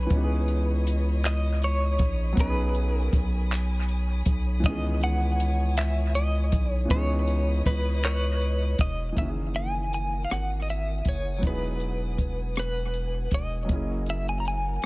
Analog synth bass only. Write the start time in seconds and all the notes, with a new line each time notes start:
0.11 C#2
2.00 A#1
2.38 B1
3.14 B1
4.27 B1
4.65 C#2
6.54 B1
6.91 C#2
7.67 C#2
8.80 E1
9.17 F#1
10.31 G#1
11.06 F#1
11.44 E1
13.32 E1
13.70 F#1